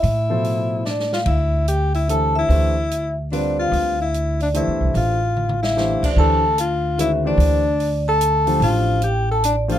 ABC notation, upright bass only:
X:1
M:3/4
L:1/8
Q:"Swing" 1/4=147
K:Ddor
V:1 name="Upright bass" clef=bass
A,,6 | D,,6 | D,,6 | D,,4- (3D,, E,, C,, |
A,,,4- A,,, z | [K:Dm] D,,6 | D,,6 | A,,,6 |]